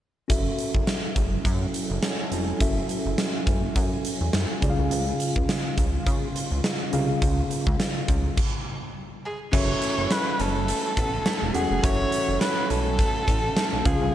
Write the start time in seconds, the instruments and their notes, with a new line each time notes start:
0.28 analog synth bass F#1, analog synth pad F#3 C#4 E4 A4 G#5, tine electric piano C#4 F#4 A4 E5, kick, closed hi-hat
0.59 closed hi-hat
0.74 analog synth bass F#1, kick
0.87 snare, closed hi-hat
1.16 analog synth bass F#1, kick, closed hi-hat
1.45 analog synth bass F#2, kick, closed hi-hat
1.74 closed hi-hat
1.90 analog synth bass F#1
2.03 snare, closed hi-hat
2.32 analog synth bass F1, closed hi-hat
2.59 analog synth bass F#1, tine electric piano C#4 F#4 A4 E5, kick, closed hi-hat
2.89 closed hi-hat
3.06 analog synth bass F#1
3.18 snare, closed hi-hat
3.47 analog synth bass F#1, kick, closed hi-hat
3.76 analog synth bass F#2, kick, closed hi-hat
4.05 closed hi-hat
4.21 analog synth bass E2
4.33 analog synth bass F#2, snare, closed hi-hat
4.61 analog synth bass C#2, tine electric piano C#3 C#4 F4 G#4 D5, analog synth pad F4, kick, closed hi-hat
4.70 tine electric piano F5
4.78 analog synth bass C2
4.91 analog synth bass C#2, closed hi-hat
5.20 closed hi-hat
5.36 analog synth bass C#2, kick
5.49 snare, closed hi-hat
5.78 analog synth bass C#2, kick, closed hi-hat
6.06 analog synth bass C#3, kick, closed hi-hat
6.36 closed hi-hat
6.51 analog synth bass C#2
6.64 snare, closed hi-hat
6.92 analog synth bass C2, tine electric piano C#3 C#4 F4 G#4 F5, closed hi-hat
7.22 analog synth bass C#2, kick, closed hi-hat
7.51 closed hi-hat
7.67 analog synth bass C#2, kick
7.80 snare, closed hi-hat
8.08 analog synth bass C#2, kick, closed hi-hat
8.38 kick, crash
9.26 erhu G#4
9.52 analog synth bass F#1, clean electric guitar E3 C#4, tine electric piano C#4 F#4 A4 E5, erhu C#5, kick, crash
9.82 clean electric guitar A3, closed hi-hat
9.98 analog synth bass F#1
10.11 clean electric guitar E3, erhu B4, snare, closed hi-hat
10.39 analog synth bass F#1, clean electric guitar C#4, erhu A4, closed hi-hat
10.68 clean electric guitar A3, closed hi-hat
10.97 analog synth bass A1, clean electric guitar B3, kick, closed hi-hat
11.13 clean electric guitar C#4
11.26 clean electric guitar A3, snare, closed hi-hat
11.42 analog synth bass E1
11.54 analog synth bass E1, clean electric guitar E3, tine electric piano C#4 F#4 A4 F#5, erhu G#4, closed hi-hat
11.71 analog synth bass F1
11.83 analog synth bass F#1, clean electric guitar E3 C#4, tine electric piano C#4 F#4 A4 E5, erhu C#5, kick, closed hi-hat
12.12 clean electric guitar A3, closed hi-hat
12.28 analog synth bass F#1
12.41 clean electric guitar E3, erhu B4, snare, closed hi-hat
12.70 analog synth bass B1, clean electric guitar C#4, erhu A4, closed hi-hat
12.99 clean electric guitar A3, kick, closed hi-hat
13.28 analog synth bass A1, clean electric guitar C#4, kick, closed hi-hat
13.57 clean electric guitar A3, snare, closed hi-hat
13.73 analog synth bass B1
13.85 analog synth bass C#2, tine electric piano C#3 C#4 F4 G#4 F5, clean electric guitar F3, erhu G#4, kick, closed hi-hat
14.02 analog synth bass C2